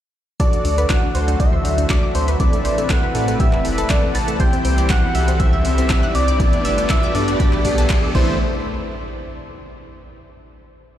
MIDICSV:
0, 0, Header, 1, 10, 480
1, 0, Start_track
1, 0, Tempo, 500000
1, 383, Time_signature, 4, 2, 24, 8
1, 10541, End_track
2, 0, Start_track
2, 0, Title_t, "Synth bell"
2, 0, Program_c, 0, 98
2, 383, Note_on_c, 0, 86, 88
2, 829, Note_off_c, 0, 86, 0
2, 862, Note_on_c, 0, 90, 89
2, 1309, Note_off_c, 0, 90, 0
2, 1344, Note_on_c, 0, 88, 89
2, 1790, Note_off_c, 0, 88, 0
2, 1826, Note_on_c, 0, 86, 89
2, 2048, Note_off_c, 0, 86, 0
2, 2066, Note_on_c, 0, 84, 85
2, 2174, Note_off_c, 0, 84, 0
2, 2307, Note_on_c, 0, 86, 95
2, 2752, Note_off_c, 0, 86, 0
2, 2787, Note_on_c, 0, 90, 93
2, 3232, Note_off_c, 0, 90, 0
2, 3265, Note_on_c, 0, 88, 96
2, 3711, Note_off_c, 0, 88, 0
2, 3746, Note_on_c, 0, 86, 101
2, 3968, Note_off_c, 0, 86, 0
2, 3987, Note_on_c, 0, 93, 103
2, 4208, Note_off_c, 0, 93, 0
2, 4225, Note_on_c, 0, 91, 109
2, 4671, Note_off_c, 0, 91, 0
2, 4706, Note_on_c, 0, 90, 95
2, 5151, Note_off_c, 0, 90, 0
2, 5184, Note_on_c, 0, 88, 102
2, 5865, Note_off_c, 0, 88, 0
2, 5904, Note_on_c, 0, 86, 101
2, 6586, Note_off_c, 0, 86, 0
2, 6624, Note_on_c, 0, 88, 89
2, 6847, Note_off_c, 0, 88, 0
2, 6865, Note_on_c, 0, 86, 87
2, 7546, Note_off_c, 0, 86, 0
2, 7823, Note_on_c, 0, 84, 92
2, 8047, Note_off_c, 0, 84, 0
2, 10541, End_track
3, 0, Start_track
3, 0, Title_t, "Analog synth lead"
3, 0, Program_c, 1, 81
3, 383, Note_on_c, 1, 74, 96
3, 863, Note_on_c, 1, 78, 98
3, 877, Note_off_c, 1, 74, 0
3, 1337, Note_off_c, 1, 78, 0
3, 1343, Note_on_c, 1, 76, 98
3, 1824, Note_on_c, 1, 74, 90
3, 1838, Note_off_c, 1, 76, 0
3, 2058, Note_off_c, 1, 74, 0
3, 2063, Note_on_c, 1, 72, 89
3, 2171, Note_off_c, 1, 72, 0
3, 2303, Note_on_c, 1, 74, 103
3, 2784, Note_on_c, 1, 78, 106
3, 2798, Note_off_c, 1, 74, 0
3, 3259, Note_off_c, 1, 78, 0
3, 3264, Note_on_c, 1, 76, 110
3, 3744, Note_on_c, 1, 74, 103
3, 3758, Note_off_c, 1, 76, 0
3, 3984, Note_on_c, 1, 81, 110
3, 3998, Note_off_c, 1, 74, 0
3, 4224, Note_on_c, 1, 79, 117
3, 4239, Note_off_c, 1, 81, 0
3, 4705, Note_on_c, 1, 78, 112
3, 4719, Note_off_c, 1, 79, 0
3, 5179, Note_off_c, 1, 78, 0
3, 5185, Note_on_c, 1, 76, 110
3, 5906, Note_on_c, 1, 74, 107
3, 5920, Note_off_c, 1, 76, 0
3, 6625, Note_on_c, 1, 76, 98
3, 6639, Note_off_c, 1, 74, 0
3, 6864, Note_on_c, 1, 74, 96
3, 6878, Note_off_c, 1, 76, 0
3, 7583, Note_off_c, 1, 74, 0
3, 7822, Note_on_c, 1, 72, 92
3, 8046, Note_off_c, 1, 72, 0
3, 10541, End_track
4, 0, Start_track
4, 0, Title_t, "Supersaw synth"
4, 0, Program_c, 2, 81
4, 383, Note_on_c, 2, 66, 85
4, 383, Note_on_c, 2, 69, 77
4, 383, Note_on_c, 2, 74, 96
4, 1076, Note_off_c, 2, 66, 0
4, 1076, Note_off_c, 2, 69, 0
4, 1076, Note_off_c, 2, 74, 0
4, 1103, Note_on_c, 2, 66, 75
4, 1103, Note_on_c, 2, 69, 72
4, 1103, Note_on_c, 2, 72, 83
4, 1796, Note_off_c, 2, 66, 0
4, 1796, Note_off_c, 2, 69, 0
4, 1796, Note_off_c, 2, 72, 0
4, 1822, Note_on_c, 2, 66, 75
4, 1822, Note_on_c, 2, 69, 69
4, 1822, Note_on_c, 2, 76, 82
4, 2275, Note_off_c, 2, 66, 0
4, 2275, Note_off_c, 2, 69, 0
4, 2275, Note_off_c, 2, 76, 0
4, 2302, Note_on_c, 2, 60, 84
4, 2302, Note_on_c, 2, 64, 76
4, 2302, Note_on_c, 2, 69, 78
4, 2302, Note_on_c, 2, 71, 76
4, 2302, Note_on_c, 2, 76, 97
4, 2995, Note_off_c, 2, 69, 0
4, 2995, Note_off_c, 2, 71, 0
4, 2996, Note_off_c, 2, 60, 0
4, 2996, Note_off_c, 2, 64, 0
4, 2996, Note_off_c, 2, 76, 0
4, 3022, Note_on_c, 2, 60, 80
4, 3022, Note_on_c, 2, 64, 75
4, 3023, Note_on_c, 2, 69, 73
4, 3023, Note_on_c, 2, 71, 75
4, 3023, Note_on_c, 2, 74, 86
4, 3716, Note_off_c, 2, 60, 0
4, 3716, Note_off_c, 2, 64, 0
4, 3716, Note_off_c, 2, 69, 0
4, 3716, Note_off_c, 2, 71, 0
4, 3716, Note_off_c, 2, 74, 0
4, 3742, Note_on_c, 2, 60, 75
4, 3742, Note_on_c, 2, 69, 69
4, 3742, Note_on_c, 2, 71, 71
4, 3742, Note_on_c, 2, 78, 87
4, 3743, Note_on_c, 2, 64, 69
4, 4196, Note_off_c, 2, 60, 0
4, 4196, Note_off_c, 2, 64, 0
4, 4196, Note_off_c, 2, 69, 0
4, 4196, Note_off_c, 2, 71, 0
4, 4196, Note_off_c, 2, 78, 0
4, 4223, Note_on_c, 2, 64, 87
4, 4223, Note_on_c, 2, 67, 76
4, 4223, Note_on_c, 2, 72, 95
4, 4916, Note_off_c, 2, 64, 0
4, 4916, Note_off_c, 2, 67, 0
4, 4916, Note_off_c, 2, 72, 0
4, 4944, Note_on_c, 2, 64, 82
4, 4944, Note_on_c, 2, 67, 72
4, 4944, Note_on_c, 2, 69, 86
4, 5636, Note_off_c, 2, 64, 0
4, 5636, Note_off_c, 2, 67, 0
4, 5636, Note_off_c, 2, 69, 0
4, 5663, Note_on_c, 2, 64, 76
4, 5663, Note_on_c, 2, 67, 73
4, 5663, Note_on_c, 2, 74, 83
4, 6116, Note_off_c, 2, 64, 0
4, 6116, Note_off_c, 2, 67, 0
4, 6116, Note_off_c, 2, 74, 0
4, 6142, Note_on_c, 2, 57, 85
4, 6142, Note_on_c, 2, 59, 77
4, 6142, Note_on_c, 2, 67, 78
4, 6142, Note_on_c, 2, 71, 94
4, 6143, Note_on_c, 2, 62, 79
4, 6836, Note_off_c, 2, 57, 0
4, 6836, Note_off_c, 2, 59, 0
4, 6836, Note_off_c, 2, 62, 0
4, 6836, Note_off_c, 2, 67, 0
4, 6836, Note_off_c, 2, 71, 0
4, 6862, Note_on_c, 2, 62, 76
4, 6863, Note_on_c, 2, 57, 83
4, 6863, Note_on_c, 2, 59, 74
4, 6863, Note_on_c, 2, 67, 76
4, 6863, Note_on_c, 2, 69, 90
4, 7556, Note_off_c, 2, 57, 0
4, 7556, Note_off_c, 2, 59, 0
4, 7556, Note_off_c, 2, 62, 0
4, 7556, Note_off_c, 2, 67, 0
4, 7556, Note_off_c, 2, 69, 0
4, 7583, Note_on_c, 2, 57, 80
4, 7583, Note_on_c, 2, 59, 73
4, 7583, Note_on_c, 2, 62, 71
4, 7583, Note_on_c, 2, 67, 70
4, 7583, Note_on_c, 2, 74, 86
4, 7823, Note_off_c, 2, 57, 0
4, 7823, Note_off_c, 2, 59, 0
4, 7823, Note_off_c, 2, 62, 0
4, 7823, Note_off_c, 2, 67, 0
4, 7823, Note_off_c, 2, 74, 0
4, 7823, Note_on_c, 2, 60, 83
4, 7823, Note_on_c, 2, 64, 78
4, 7823, Note_on_c, 2, 69, 79
4, 7823, Note_on_c, 2, 71, 81
4, 7823, Note_on_c, 2, 76, 96
4, 8004, Note_off_c, 2, 60, 0
4, 8004, Note_off_c, 2, 64, 0
4, 8004, Note_off_c, 2, 69, 0
4, 8004, Note_off_c, 2, 71, 0
4, 8004, Note_off_c, 2, 76, 0
4, 10541, End_track
5, 0, Start_track
5, 0, Title_t, "Synth pluck"
5, 0, Program_c, 3, 84
5, 383, Note_on_c, 3, 69, 92
5, 467, Note_off_c, 3, 69, 0
5, 509, Note_on_c, 3, 62, 65
5, 585, Note_off_c, 3, 62, 0
5, 623, Note_on_c, 3, 62, 62
5, 707, Note_off_c, 3, 62, 0
5, 749, Note_on_c, 3, 71, 96
5, 825, Note_off_c, 3, 71, 0
5, 862, Note_on_c, 3, 62, 62
5, 947, Note_off_c, 3, 62, 0
5, 989, Note_on_c, 3, 62, 63
5, 1065, Note_off_c, 3, 62, 0
5, 1102, Note_on_c, 3, 72, 88
5, 1187, Note_off_c, 3, 72, 0
5, 1229, Note_on_c, 3, 62, 62
5, 1305, Note_off_c, 3, 62, 0
5, 1342, Note_on_c, 3, 62, 63
5, 1427, Note_off_c, 3, 62, 0
5, 1468, Note_on_c, 3, 72, 92
5, 1544, Note_off_c, 3, 72, 0
5, 1581, Note_on_c, 3, 62, 62
5, 1666, Note_off_c, 3, 62, 0
5, 1708, Note_on_c, 3, 62, 66
5, 1785, Note_off_c, 3, 62, 0
5, 1822, Note_on_c, 3, 62, 61
5, 1907, Note_off_c, 3, 62, 0
5, 1948, Note_on_c, 3, 74, 86
5, 2024, Note_off_c, 3, 74, 0
5, 2062, Note_on_c, 3, 62, 61
5, 2147, Note_off_c, 3, 62, 0
5, 2189, Note_on_c, 3, 71, 92
5, 2265, Note_off_c, 3, 71, 0
5, 2302, Note_on_c, 3, 57, 62
5, 2387, Note_off_c, 3, 57, 0
5, 2429, Note_on_c, 3, 57, 64
5, 2505, Note_off_c, 3, 57, 0
5, 2542, Note_on_c, 3, 72, 91
5, 2627, Note_off_c, 3, 72, 0
5, 2669, Note_on_c, 3, 57, 63
5, 2745, Note_off_c, 3, 57, 0
5, 2782, Note_on_c, 3, 57, 63
5, 2867, Note_off_c, 3, 57, 0
5, 2909, Note_on_c, 3, 71, 93
5, 2985, Note_off_c, 3, 71, 0
5, 3023, Note_on_c, 3, 57, 61
5, 3108, Note_off_c, 3, 57, 0
5, 3150, Note_on_c, 3, 57, 62
5, 3225, Note_off_c, 3, 57, 0
5, 3263, Note_on_c, 3, 67, 96
5, 3348, Note_off_c, 3, 67, 0
5, 3390, Note_on_c, 3, 57, 66
5, 3465, Note_off_c, 3, 57, 0
5, 3503, Note_on_c, 3, 57, 64
5, 3588, Note_off_c, 3, 57, 0
5, 3629, Note_on_c, 3, 69, 96
5, 3705, Note_off_c, 3, 69, 0
5, 3742, Note_on_c, 3, 57, 64
5, 3827, Note_off_c, 3, 57, 0
5, 3870, Note_on_c, 3, 57, 66
5, 3945, Note_off_c, 3, 57, 0
5, 3982, Note_on_c, 3, 71, 87
5, 4067, Note_off_c, 3, 71, 0
5, 4108, Note_on_c, 3, 57, 60
5, 4185, Note_off_c, 3, 57, 0
5, 4222, Note_on_c, 3, 72, 101
5, 4307, Note_off_c, 3, 72, 0
5, 4349, Note_on_c, 3, 60, 65
5, 4425, Note_off_c, 3, 60, 0
5, 4462, Note_on_c, 3, 60, 66
5, 4547, Note_off_c, 3, 60, 0
5, 4589, Note_on_c, 3, 74, 91
5, 4665, Note_off_c, 3, 74, 0
5, 4702, Note_on_c, 3, 60, 64
5, 4787, Note_off_c, 3, 60, 0
5, 4829, Note_on_c, 3, 60, 65
5, 4905, Note_off_c, 3, 60, 0
5, 4942, Note_on_c, 3, 76, 95
5, 5027, Note_off_c, 3, 76, 0
5, 5069, Note_on_c, 3, 60, 64
5, 5145, Note_off_c, 3, 60, 0
5, 5183, Note_on_c, 3, 60, 63
5, 5267, Note_off_c, 3, 60, 0
5, 5308, Note_on_c, 3, 76, 92
5, 5385, Note_off_c, 3, 76, 0
5, 5422, Note_on_c, 3, 60, 64
5, 5507, Note_off_c, 3, 60, 0
5, 5549, Note_on_c, 3, 60, 66
5, 5625, Note_off_c, 3, 60, 0
5, 5662, Note_on_c, 3, 60, 64
5, 5747, Note_off_c, 3, 60, 0
5, 5789, Note_on_c, 3, 78, 90
5, 5865, Note_off_c, 3, 78, 0
5, 5902, Note_on_c, 3, 60, 62
5, 5987, Note_off_c, 3, 60, 0
5, 6029, Note_on_c, 3, 74, 92
5, 6105, Note_off_c, 3, 74, 0
5, 6143, Note_on_c, 3, 62, 65
5, 6227, Note_off_c, 3, 62, 0
5, 6270, Note_on_c, 3, 62, 66
5, 6345, Note_off_c, 3, 62, 0
5, 6382, Note_on_c, 3, 76, 100
5, 6467, Note_off_c, 3, 76, 0
5, 6509, Note_on_c, 3, 62, 66
5, 6585, Note_off_c, 3, 62, 0
5, 6622, Note_on_c, 3, 62, 67
5, 6707, Note_off_c, 3, 62, 0
5, 6749, Note_on_c, 3, 74, 96
5, 6825, Note_off_c, 3, 74, 0
5, 6862, Note_on_c, 3, 62, 61
5, 6947, Note_off_c, 3, 62, 0
5, 6989, Note_on_c, 3, 62, 66
5, 7065, Note_off_c, 3, 62, 0
5, 7102, Note_on_c, 3, 71, 95
5, 7187, Note_off_c, 3, 71, 0
5, 7229, Note_on_c, 3, 62, 64
5, 7305, Note_off_c, 3, 62, 0
5, 7341, Note_on_c, 3, 62, 64
5, 7426, Note_off_c, 3, 62, 0
5, 7469, Note_on_c, 3, 69, 95
5, 7545, Note_off_c, 3, 69, 0
5, 7582, Note_on_c, 3, 62, 67
5, 7667, Note_off_c, 3, 62, 0
5, 7709, Note_on_c, 3, 62, 65
5, 7785, Note_off_c, 3, 62, 0
5, 7823, Note_on_c, 3, 64, 87
5, 8004, Note_off_c, 3, 64, 0
5, 10541, End_track
6, 0, Start_track
6, 0, Title_t, "Analog synth pad"
6, 0, Program_c, 4, 89
6, 382, Note_on_c, 4, 54, 77
6, 382, Note_on_c, 4, 57, 90
6, 383, Note_on_c, 4, 50, 80
6, 2283, Note_off_c, 4, 54, 0
6, 2284, Note_off_c, 4, 50, 0
6, 2301, Note_on_c, 4, 48, 82
6, 2302, Note_on_c, 4, 71, 92
6, 4184, Note_off_c, 4, 57, 0
6, 4203, Note_off_c, 4, 48, 0
6, 4204, Note_off_c, 4, 71, 0
6, 4224, Note_on_c, 4, 52, 80
6, 4224, Note_on_c, 4, 55, 76
6, 4224, Note_on_c, 4, 60, 89
6, 6124, Note_off_c, 4, 52, 0
6, 6124, Note_off_c, 4, 60, 0
6, 6143, Note_on_c, 4, 57, 78
6, 6143, Note_on_c, 4, 59, 93
6, 7788, Note_off_c, 4, 55, 0
6, 7806, Note_off_c, 4, 57, 0
6, 7806, Note_off_c, 4, 59, 0
6, 7824, Note_on_c, 4, 45, 73
6, 7824, Note_on_c, 4, 57, 70
6, 7824, Note_on_c, 4, 59, 70
6, 7824, Note_on_c, 4, 60, 70
6, 7824, Note_on_c, 4, 64, 83
6, 8047, Note_off_c, 4, 45, 0
6, 8047, Note_off_c, 4, 57, 0
6, 8047, Note_off_c, 4, 59, 0
6, 8047, Note_off_c, 4, 60, 0
6, 8047, Note_off_c, 4, 64, 0
6, 10541, End_track
7, 0, Start_track
7, 0, Title_t, "Sub bass"
7, 0, Program_c, 5, 38
7, 622, Note_on_c, 5, 38, 100
7, 817, Note_off_c, 5, 38, 0
7, 1103, Note_on_c, 5, 38, 99
7, 1297, Note_off_c, 5, 38, 0
7, 1470, Note_on_c, 5, 38, 101
7, 1560, Note_off_c, 5, 38, 0
7, 1584, Note_on_c, 5, 38, 80
7, 1778, Note_off_c, 5, 38, 0
7, 2064, Note_on_c, 5, 38, 89
7, 2258, Note_off_c, 5, 38, 0
7, 2544, Note_on_c, 5, 33, 83
7, 2738, Note_off_c, 5, 33, 0
7, 3023, Note_on_c, 5, 45, 100
7, 3217, Note_off_c, 5, 45, 0
7, 3391, Note_on_c, 5, 28, 79
7, 3480, Note_off_c, 5, 28, 0
7, 3503, Note_on_c, 5, 28, 103
7, 3697, Note_off_c, 5, 28, 0
7, 3983, Note_on_c, 5, 33, 103
7, 4177, Note_off_c, 5, 33, 0
7, 4462, Note_on_c, 5, 36, 96
7, 4657, Note_off_c, 5, 36, 0
7, 4942, Note_on_c, 5, 36, 97
7, 5137, Note_off_c, 5, 36, 0
7, 5309, Note_on_c, 5, 36, 108
7, 5400, Note_off_c, 5, 36, 0
7, 5423, Note_on_c, 5, 36, 81
7, 5617, Note_off_c, 5, 36, 0
7, 5903, Note_on_c, 5, 36, 89
7, 6097, Note_off_c, 5, 36, 0
7, 6383, Note_on_c, 5, 31, 85
7, 6577, Note_off_c, 5, 31, 0
7, 6863, Note_on_c, 5, 43, 103
7, 7057, Note_off_c, 5, 43, 0
7, 7229, Note_on_c, 5, 35, 80
7, 7320, Note_off_c, 5, 35, 0
7, 7343, Note_on_c, 5, 35, 104
7, 7537, Note_off_c, 5, 35, 0
7, 7823, Note_on_c, 5, 33, 99
7, 8046, Note_off_c, 5, 33, 0
7, 10541, End_track
8, 0, Start_track
8, 0, Title_t, "Impact"
8, 0, Program_c, 6, 103
8, 7823, Note_on_c, 6, 60, 71
8, 9743, Note_off_c, 6, 60, 0
8, 10541, End_track
9, 0, Start_track
9, 0, Title_t, "Riser"
9, 0, Program_c, 7, 103
9, 382, Note_on_c, 7, 60, 76
9, 7823, Note_off_c, 7, 60, 0
9, 10541, End_track
10, 0, Start_track
10, 0, Title_t, "Drums"
10, 382, Note_on_c, 9, 36, 115
10, 383, Note_on_c, 9, 42, 66
10, 478, Note_off_c, 9, 36, 0
10, 479, Note_off_c, 9, 42, 0
10, 509, Note_on_c, 9, 42, 36
10, 605, Note_off_c, 9, 42, 0
10, 622, Note_on_c, 9, 46, 101
10, 718, Note_off_c, 9, 46, 0
10, 749, Note_on_c, 9, 42, 50
10, 845, Note_off_c, 9, 42, 0
10, 859, Note_on_c, 9, 39, 121
10, 862, Note_on_c, 9, 36, 111
10, 862, Note_on_c, 9, 42, 65
10, 955, Note_off_c, 9, 39, 0
10, 958, Note_off_c, 9, 36, 0
10, 958, Note_off_c, 9, 42, 0
10, 1102, Note_on_c, 9, 46, 96
10, 1198, Note_off_c, 9, 46, 0
10, 1229, Note_on_c, 9, 42, 53
10, 1325, Note_off_c, 9, 42, 0
10, 1342, Note_on_c, 9, 36, 113
10, 1343, Note_on_c, 9, 42, 66
10, 1438, Note_off_c, 9, 36, 0
10, 1439, Note_off_c, 9, 42, 0
10, 1583, Note_on_c, 9, 46, 107
10, 1679, Note_off_c, 9, 46, 0
10, 1710, Note_on_c, 9, 42, 55
10, 1806, Note_off_c, 9, 42, 0
10, 1820, Note_on_c, 9, 39, 121
10, 1822, Note_on_c, 9, 36, 113
10, 1823, Note_on_c, 9, 42, 70
10, 1916, Note_off_c, 9, 39, 0
10, 1918, Note_off_c, 9, 36, 0
10, 1919, Note_off_c, 9, 42, 0
10, 2063, Note_on_c, 9, 46, 101
10, 2159, Note_off_c, 9, 46, 0
10, 2189, Note_on_c, 9, 42, 51
10, 2285, Note_off_c, 9, 42, 0
10, 2303, Note_on_c, 9, 36, 120
10, 2303, Note_on_c, 9, 42, 64
10, 2399, Note_off_c, 9, 36, 0
10, 2399, Note_off_c, 9, 42, 0
10, 2430, Note_on_c, 9, 42, 37
10, 2526, Note_off_c, 9, 42, 0
10, 2543, Note_on_c, 9, 46, 105
10, 2639, Note_off_c, 9, 46, 0
10, 2670, Note_on_c, 9, 42, 51
10, 2766, Note_off_c, 9, 42, 0
10, 2780, Note_on_c, 9, 39, 117
10, 2783, Note_on_c, 9, 36, 115
10, 2783, Note_on_c, 9, 42, 63
10, 2876, Note_off_c, 9, 39, 0
10, 2879, Note_off_c, 9, 36, 0
10, 2879, Note_off_c, 9, 42, 0
10, 3022, Note_on_c, 9, 46, 109
10, 3118, Note_off_c, 9, 46, 0
10, 3150, Note_on_c, 9, 42, 52
10, 3246, Note_off_c, 9, 42, 0
10, 3263, Note_on_c, 9, 36, 120
10, 3263, Note_on_c, 9, 42, 62
10, 3359, Note_off_c, 9, 36, 0
10, 3359, Note_off_c, 9, 42, 0
10, 3387, Note_on_c, 9, 39, 38
10, 3483, Note_off_c, 9, 39, 0
10, 3502, Note_on_c, 9, 46, 108
10, 3598, Note_off_c, 9, 46, 0
10, 3629, Note_on_c, 9, 42, 53
10, 3725, Note_off_c, 9, 42, 0
10, 3739, Note_on_c, 9, 39, 126
10, 3742, Note_on_c, 9, 42, 68
10, 3743, Note_on_c, 9, 36, 118
10, 3835, Note_off_c, 9, 39, 0
10, 3838, Note_off_c, 9, 42, 0
10, 3839, Note_off_c, 9, 36, 0
10, 3982, Note_on_c, 9, 46, 106
10, 4078, Note_off_c, 9, 46, 0
10, 4109, Note_on_c, 9, 42, 51
10, 4205, Note_off_c, 9, 42, 0
10, 4222, Note_on_c, 9, 42, 62
10, 4223, Note_on_c, 9, 36, 125
10, 4318, Note_off_c, 9, 42, 0
10, 4319, Note_off_c, 9, 36, 0
10, 4349, Note_on_c, 9, 42, 36
10, 4445, Note_off_c, 9, 42, 0
10, 4462, Note_on_c, 9, 46, 108
10, 4558, Note_off_c, 9, 46, 0
10, 4589, Note_on_c, 9, 42, 51
10, 4685, Note_off_c, 9, 42, 0
10, 4699, Note_on_c, 9, 39, 123
10, 4702, Note_on_c, 9, 42, 64
10, 4703, Note_on_c, 9, 36, 122
10, 4795, Note_off_c, 9, 39, 0
10, 4798, Note_off_c, 9, 42, 0
10, 4799, Note_off_c, 9, 36, 0
10, 4942, Note_on_c, 9, 46, 110
10, 5038, Note_off_c, 9, 46, 0
10, 5069, Note_on_c, 9, 42, 50
10, 5165, Note_off_c, 9, 42, 0
10, 5182, Note_on_c, 9, 42, 63
10, 5183, Note_on_c, 9, 36, 123
10, 5278, Note_off_c, 9, 42, 0
10, 5279, Note_off_c, 9, 36, 0
10, 5422, Note_on_c, 9, 46, 110
10, 5518, Note_off_c, 9, 46, 0
10, 5550, Note_on_c, 9, 42, 50
10, 5646, Note_off_c, 9, 42, 0
10, 5660, Note_on_c, 9, 39, 127
10, 5663, Note_on_c, 9, 36, 127
10, 5663, Note_on_c, 9, 42, 67
10, 5756, Note_off_c, 9, 39, 0
10, 5759, Note_off_c, 9, 36, 0
10, 5759, Note_off_c, 9, 42, 0
10, 5902, Note_on_c, 9, 46, 111
10, 5998, Note_off_c, 9, 46, 0
10, 6029, Note_on_c, 9, 42, 53
10, 6125, Note_off_c, 9, 42, 0
10, 6143, Note_on_c, 9, 36, 123
10, 6143, Note_on_c, 9, 42, 63
10, 6239, Note_off_c, 9, 36, 0
10, 6239, Note_off_c, 9, 42, 0
10, 6269, Note_on_c, 9, 42, 35
10, 6365, Note_off_c, 9, 42, 0
10, 6382, Note_on_c, 9, 46, 113
10, 6478, Note_off_c, 9, 46, 0
10, 6509, Note_on_c, 9, 42, 49
10, 6605, Note_off_c, 9, 42, 0
10, 6619, Note_on_c, 9, 39, 116
10, 6622, Note_on_c, 9, 42, 65
10, 6623, Note_on_c, 9, 36, 116
10, 6715, Note_off_c, 9, 39, 0
10, 6718, Note_off_c, 9, 42, 0
10, 6719, Note_off_c, 9, 36, 0
10, 6862, Note_on_c, 9, 46, 105
10, 6958, Note_off_c, 9, 46, 0
10, 6989, Note_on_c, 9, 42, 50
10, 7085, Note_off_c, 9, 42, 0
10, 7102, Note_on_c, 9, 42, 62
10, 7103, Note_on_c, 9, 36, 119
10, 7198, Note_off_c, 9, 42, 0
10, 7199, Note_off_c, 9, 36, 0
10, 7227, Note_on_c, 9, 39, 36
10, 7323, Note_off_c, 9, 39, 0
10, 7342, Note_on_c, 9, 46, 111
10, 7343, Note_on_c, 9, 36, 66
10, 7438, Note_off_c, 9, 46, 0
10, 7439, Note_off_c, 9, 36, 0
10, 7469, Note_on_c, 9, 42, 52
10, 7565, Note_off_c, 9, 42, 0
10, 7579, Note_on_c, 9, 39, 127
10, 7582, Note_on_c, 9, 42, 67
10, 7583, Note_on_c, 9, 36, 127
10, 7675, Note_off_c, 9, 39, 0
10, 7678, Note_off_c, 9, 42, 0
10, 7679, Note_off_c, 9, 36, 0
10, 7822, Note_on_c, 9, 49, 89
10, 7823, Note_on_c, 9, 36, 116
10, 7918, Note_off_c, 9, 49, 0
10, 7919, Note_off_c, 9, 36, 0
10, 10541, End_track
0, 0, End_of_file